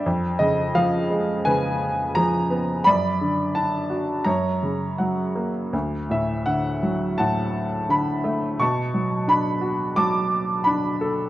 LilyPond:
<<
  \new Staff \with { instrumentName = "Upright piano" } { \time 4/4 \key b \minor \tempo 4 = 86 << { r8 dis''8 eis''4 gis''4 ais''4 | b''4 a''4 ais''4 fis''8. r16 | r8 e''8 fis''4 a''4 b''4 | cis'''4 b''4 d'''4 b''8. r16 | } \\ { r2 b'2 | d''2 cis''2 | r2 fis''2 | a''2 a''2 | } >> }
  \new Staff \with { instrumentName = "Upright piano" } { \clef bass \time 4/4 \key b \minor eis,8 cis8 eis8 gis8 cis4 eis8 b8 | fis,8 d8 d'8 fis'8 fis,8 cis8 fis8 ais8 | d,8 a,8 d8 fis8 a,4 d8 a8 | b,8 fis8 d'8 fis'8 fis4 d'8 a'8 | }
>>